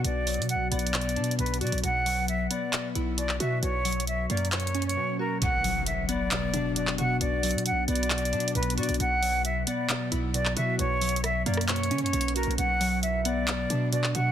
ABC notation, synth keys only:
X:1
M:4/4
L:1/8
Q:1/4=134
K:Bm
V:1 name="Synth keys" clef=bass
[B,,DF] F,2 B, B,, D B,, F | B,, F,2 B, B,, E B,, F | B,, F,2 ^A, B,, C B,, F | B,, F,2 B, B,, D B,, F |
B,, F,2 B, B,, D B,, F | B,, F,2 B, B,, E B,, F | B,, F,2 ^A, B,, C B,, F | B,, F,2 B, B,, D B,, F |]